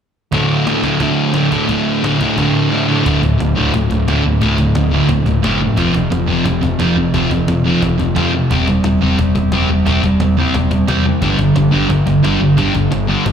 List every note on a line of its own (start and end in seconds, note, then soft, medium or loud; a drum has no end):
0.32 0.66 D2 loud
0.32 0.65 A2 medium
0.32 0.67 D3 loud
0.32 cajon bass loud
0.67 0.85 D2 medium
0.67 0.83 A2 medium
0.67 0.83 D3 loud
0.67 cajon slap loud
0.84 1.00 D2 medium
0.84 0.99 A2 medium
0.84 1.00 D3 loud
0.84 cajon bass medium
1.00 1.33 D2 medium
1.00 1.33 A2 loud
1.00 1.34 D3 loud
1.00 cajon bass loud
1.33 1.51 D2 medium
1.33 1.50 A2 medium
1.33 1.50 D3 medium
1.33 cajon slap loud
1.51 1.66 D2 medium
1.51 1.67 A2 medium
1.51 1.67 D3 medium
1.51 cajon bass medium
1.67 2.01 D2 medium
1.67 2.02 A2 loud
1.67 2.02 D3 loud
1.67 cajon bass loud
2.02 2.19 D2 medium
2.02 2.18 A2 medium
2.02 2.18 D3 loud
2.02 cajon slap loud
2.20 2.34 D2 medium
2.20 2.35 A2 medium
2.20 2.36 D3 loud
2.20 cajon bass medium
2.36 2.69 D2 medium
2.36 2.69 A2 loud
2.36 2.70 D3 loud
2.36 cajon bass loud
2.70 2.88 D2 medium
2.70 2.88 A2 medium
2.70 2.87 D3 medium
2.88 3.02 D2 medium
2.88 3.03 A2 medium
2.88 3.03 D3 medium
3.03 3.17 D1 loud
3.03 3.20 D2 medium
3.03 3.20 A2 loud
3.03 3.21 D3 loud
3.03 cajon bass loud
3.21 3.34 D1 medium
3.21 3.37 D2 medium
3.21 3.38 A2 medium
3.21 cajon bass medium
3.38 3.52 D1 medium
3.38 3.54 D2 medium
3.38 3.54 A2 medium
3.38 cajon slap loud
3.55 3.69 D1 medium
3.55 3.72 D2 loud
3.55 3.72 A2 loud
3.55 3.72 D3 loud
3.74 3.85 D1 medium
3.74 3.89 D2 medium
3.74 3.89 A2 medium
3.74 cajon bass loud
3.90 4.02 D1 medium
3.90 4.06 D2 medium
3.90 4.06 A2 medium
3.90 cajon bass medium
4.07 4.19 D1 medium
4.07 4.22 D2 medium
4.07 4.23 A2 medium
4.07 4.24 D3 medium
4.07 cajon slap loud
4.24 4.37 D1 medium
4.24 4.40 D2 medium
4.24 4.40 A2 medium
4.41 4.53 D1 loud
4.41 4.57 D2 loud
4.41 4.57 A2 medium
4.41 4.58 D3 loud
4.41 cajon bass loud
4.58 4.70 D1 medium
4.58 4.74 D2 medium
4.58 4.74 A2 medium
4.58 cajon bass medium
4.75 4.99 D1 medium
4.75 4.90 D2 medium
4.75 4.90 A2 medium
4.75 cajon slap loud
4.91 5.08 D2 loud
4.91 5.08 A2 medium
4.91 5.09 D3 loud
5.09 5.21 D1 medium
5.09 5.26 D2 medium
5.09 5.26 A2 medium
5.09 cajon bass loud
5.26 5.38 D1 medium
5.26 5.42 D2 medium
5.26 5.42 A2 medium
5.26 cajon bass medium
5.43 5.67 F#1 medium
5.43 5.59 D2 medium
5.43 5.60 A2 loud
5.43 5.60 D3 loud
5.43 cajon slap loud
5.61 5.76 D2 medium
5.61 5.77 A2 medium
5.77 5.89 F1 loud
5.77 5.93 F2 medium
5.77 5.93 C3 medium
5.77 5.94 F3 loud
5.77 cajon bass loud
5.94 6.06 F1 medium
5.94 6.09 F2 medium
5.94 6.09 C3 medium
5.94 cajon bass medium
6.10 6.23 F1 medium
6.10 6.26 F2 medium
6.10 6.27 C3 medium
6.10 cajon slap loud
6.27 6.40 F1 medium
6.27 6.44 F2 loud
6.27 6.45 C3 loud
6.27 6.45 F3 loud
6.45 6.57 F1 loud
6.45 6.61 F2 medium
6.45 6.61 C3 medium
6.45 cajon bass loud
6.62 6.75 F1 medium
6.62 6.78 F2 medium
6.62 6.78 C3 medium
6.62 cajon bass medium
6.80 6.91 F1 medium
6.80 6.96 F2 medium
6.80 6.96 C3 medium
6.80 6.97 F3 medium
6.80 cajon slap loud
6.96 7.08 F1 medium
6.96 7.13 F2 medium
6.96 7.13 C3 medium
7.14 7.26 F1 loud
7.14 7.30 F2 medium
7.14 7.30 C3 medium
7.14 7.31 F3 medium
7.14 cajon bass loud
7.31 7.43 F1 medium
7.31 7.47 F2 medium
7.31 7.47 C3 medium
7.31 cajon bass medium
7.47 7.70 F1 medium
7.47 7.64 F2 medium
7.47 7.63 C3 medium
7.47 cajon slap loud
7.66 7.80 F2 loud
7.66 7.81 C3 loud
7.66 7.82 F3 loud
7.82 7.94 F1 medium
7.82 7.97 F2 medium
7.82 7.98 C3 medium
7.82 cajon bass loud
7.99 8.11 F1 medium
7.99 8.15 F2 medium
7.99 8.15 C3 medium
7.99 cajon bass medium
8.16 8.32 F2 medium
8.16 8.39 F2 medium
8.16 8.32 C3 medium
8.16 8.33 F3 medium
8.16 cajon slap loud
8.34 8.49 F2 medium
8.34 8.50 C3 medium
8.51 8.62 E1 loud
8.51 8.67 C3 medium
8.51 8.67 G3 medium
8.51 8.67 C4 medium
8.51 cajon bass loud
8.67 8.79 E1 medium
8.67 8.84 C3 medium
8.67 8.84 G3 medium
8.67 cajon bass medium
8.84 8.96 E1 medium
8.84 9.00 C3 medium
8.84 9.00 G3 medium
8.84 cajon slap loud
9.02 9.13 E1 medium
9.02 9.17 C3 medium
9.02 9.17 G3 loud
9.02 9.18 C4 loud
9.18 9.30 E1 medium
9.18 9.34 C3 medium
9.18 9.34 G3 medium
9.18 cajon bass loud
9.35 9.47 E1 medium
9.35 9.50 C3 medium
9.35 9.51 G3 medium
9.35 cajon bass medium
9.52 9.63 E1 medium
9.52 9.68 C3 medium
9.52 9.68 G3 medium
9.52 9.69 C4 loud
9.52 cajon slap loud
9.69 9.81 E1 medium
9.69 9.85 C3 medium
9.69 9.85 G3 medium
9.86 9.98 E1 medium
9.86 10.02 C3 medium
9.86 10.03 G3 loud
9.86 10.03 C4 loud
9.86 cajon bass loud
10.04 10.15 E1 medium
10.04 10.19 C3 medium
10.04 10.20 G3 medium
10.04 cajon bass medium
10.20 10.42 E1 medium
10.20 10.37 C3 medium
10.20 10.37 G3 medium
10.20 cajon slap loud
10.39 10.53 C3 loud
10.39 10.54 G3 loud
10.39 10.55 C4 loud
10.54 10.66 E1 loud
10.54 10.70 C3 medium
10.54 10.70 G3 medium
10.54 cajon bass loud
10.71 10.82 E1 medium
10.71 10.86 C3 medium
10.71 10.87 G3 medium
10.71 cajon bass medium
10.88 11.11 E2 medium
10.88 11.04 C3 medium
10.88 11.04 G3 medium
10.88 11.05 C4 loud
10.88 cajon slap loud
11.05 11.21 C3 medium
11.05 11.21 G3 medium
11.22 11.33 G1 medium
11.22 11.38 G2 medium
11.22 11.38 D3 loud
11.22 11.39 G3 loud
11.22 cajon bass loud
11.39 11.50 G1 medium
11.39 11.55 G2 medium
11.39 11.55 D3 medium
11.39 cajon bass medium
11.56 11.68 G1 medium
11.56 11.70 G2 medium
11.56 11.71 D3 medium
11.56 cajon slap loud
11.71 11.85 G1 medium
11.71 11.88 G2 loud
11.71 11.88 D3 medium
11.71 11.89 G3 loud
11.89 12.01 G1 loud
11.89 12.05 G2 medium
11.89 12.05 D3 medium
11.89 cajon bass loud
12.06 12.18 G1 medium
12.06 12.22 G2 medium
12.06 12.22 D3 medium
12.06 cajon bass medium
12.23 12.36 G1 medium
12.23 12.39 G2 medium
12.23 12.40 D3 loud
12.23 12.40 G3 medium
12.23 cajon slap loud
12.40 12.53 G1 medium
12.40 12.56 G2 medium
12.40 12.56 D3 medium
12.57 12.69 G1 loud
12.57 12.73 G2 loud
12.57 12.73 D3 medium
12.57 12.74 G3 loud
12.57 cajon bass loud
12.74 12.86 G1 medium
12.74 12.90 G2 medium
12.74 12.90 D3 medium
12.74 cajon bass medium
12.91 13.15 G1 medium
12.91 13.06 G2 medium
12.91 13.07 D3 loud
12.91 cajon slap loud
13.07 13.24 G2 medium
13.07 13.24 D3 loud
13.07 13.25 G3 loud
13.25 13.32 G1 medium
13.25 13.32 G2 medium
13.25 13.32 D3 medium
13.25 cajon bass loud